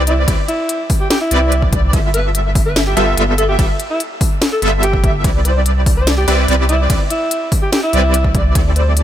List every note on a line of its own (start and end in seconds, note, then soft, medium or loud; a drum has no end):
0.00 0.26 C2 medium
0.00 0.25 G3 medium
0.00 0.25 C4 medium
0.00 0.25 E4 medium
0.00 0.25 B4 medium
0.00 0.25 D5 loud
0.07 0.18 E4 medium
0.07 closed hi-hat medium
0.28 0.35 C2 loud
0.28 0.37 G3 medium
0.28 0.37 C4 medium
0.28 0.37 E4 medium
0.28 0.37 B4 medium
0.28 0.37 D5 loud
0.28 0.37 D5 medium
0.28 kick loud
0.28 closed hi-hat medium
0.28 ride soft
0.48 0.90 E4 medium
0.48 closed hi-hat medium
0.69 closed hi-hat medium
0.90 kick loud
0.90 open hi-hat medium
1.00 1.07 G4 medium
1.10 1.17 G4 medium
1.10 snare loud
1.10 closed hi-hat medium
1.21 1.79 E4 loud
1.31 1.95 C2 loud
1.31 1.91 G3 loud
1.31 1.91 C4 medium
1.31 1.91 E4 medium
1.31 1.91 B4 medium
1.31 1.91 D5 loud
1.31 closed hi-hat medium
1.52 closed hi-hat medium
1.62 kick medium
1.73 kick loud
1.73 closed hi-hat medium
1.93 2.95 G1 medium
1.93 2.94 G3 medium
1.93 2.94 B3 medium
1.93 2.94 F4 medium
1.93 2.94 A4 medium
1.93 2.94 E5 medium
1.93 kick loud
1.93 closed hi-hat medium
1.93 ride soft
2.14 2.25 B4 medium
2.14 closed hi-hat medium
2.35 closed hi-hat medium
2.55 kick loud
2.55 open hi-hat medium
2.66 2.76 B4 medium
2.76 snare loud
2.76 closed hi-hat medium
2.87 2.93 G4 medium
2.97 3.15 G1 loud
2.97 3.15 G3 medium
2.97 3.15 B3 medium
2.97 3.15 F4 medium
2.97 3.03 G4 medium
2.97 3.15 A4 medium
2.97 3.15 E5 medium
2.97 closed hi-hat medium
3.17 3.57 G1 medium
3.17 3.56 G3 loud
3.17 3.56 B3 medium
3.17 3.56 F4 medium
3.17 3.56 A4 medium
3.17 3.56 E5 loud
3.17 closed hi-hat medium
3.38 3.46 A4 medium
3.38 closed hi-hat medium
3.49 3.55 G4 medium
3.59 3.66 G1 loud
3.59 3.68 G3 medium
3.59 3.68 B3 medium
3.59 3.68 F4 medium
3.59 3.65 G4 medium
3.59 3.68 A4 medium
3.59 3.68 E5 medium
3.59 kick loud
3.59 closed hi-hat medium
3.59 ride soft
3.80 closed hi-hat medium
3.90 4.01 E4 medium
4.00 closed hi-hat medium
4.21 kick loud
4.21 open hi-hat medium
4.42 snare loud
4.42 closed hi-hat medium
4.52 4.59 A4 medium
4.62 5.26 G1 loud
4.62 5.22 G3 medium
4.62 5.22 B3 medium
4.62 5.22 F4 medium
4.62 5.22 A4 medium
4.62 4.69 A4 medium
4.62 5.22 E5 loud
4.62 closed hi-hat medium
4.83 5.14 G4 medium
4.83 closed hi-hat medium
4.93 kick medium
5.04 kick loud
5.04 closed hi-hat medium
5.24 6.26 C2 medium
5.24 6.25 G3 medium
5.24 6.25 C4 medium
5.24 6.25 E4 medium
5.24 6.25 B4 medium
5.24 6.25 D5 medium
5.24 kick loud
5.24 closed hi-hat medium
5.24 ride medium
5.45 5.56 C5 medium
5.45 closed hi-hat medium
5.66 closed hi-hat medium
5.86 kick loud
5.86 open hi-hat medium
5.97 6.07 C5 loud
6.07 snare loud
6.07 closed hi-hat medium
6.17 6.24 G4 medium
6.28 6.46 C2 loud
6.28 6.46 G3 medium
6.28 6.46 C4 medium
6.28 6.46 E4 medium
6.28 6.34 G4 medium
6.28 6.46 B4 medium
6.28 6.46 D5 medium
6.28 closed hi-hat medium
6.48 6.88 C2 loud
6.48 6.87 G3 loud
6.48 6.87 C4 medium
6.48 6.87 E4 medium
6.48 6.87 B4 medium
6.48 6.87 D5 loud
6.48 closed hi-hat medium
6.69 6.80 E4 medium
6.69 closed hi-hat medium
6.90 6.97 C2 loud
6.90 6.99 G3 medium
6.90 6.99 C4 medium
6.90 6.99 E4 medium
6.90 6.99 B4 medium
6.90 6.99 D5 medium
6.90 kick loud
6.90 closed hi-hat medium
6.90 ride medium
7.10 7.52 E4 medium
7.10 closed hi-hat medium
7.31 closed hi-hat medium
7.52 kick loud
7.52 open hi-hat loud
7.62 7.69 G4 medium
7.73 7.79 G4 medium
7.73 snare loud
7.73 closed hi-hat medium
7.83 8.41 E4 loud
7.93 8.57 C2 loud
7.93 8.53 G3 loud
7.93 8.53 C4 medium
7.93 8.53 E4 medium
7.93 8.53 B4 medium
7.93 8.53 D5 loud
7.93 closed hi-hat medium
8.14 closed hi-hat medium
8.24 kick medium
8.35 kick loud
8.35 closed hi-hat medium
8.55 9.03 D2 loud
8.55 9.03 G3 medium
8.55 9.03 C4 medium
8.55 9.03 E4 medium
8.55 9.03 A4 medium
8.55 9.03 D5 medium
8.55 kick loud
8.55 closed hi-hat medium
8.55 ride soft
8.76 8.87 C5 medium
8.76 closed hi-hat medium
8.97 closed hi-hat medium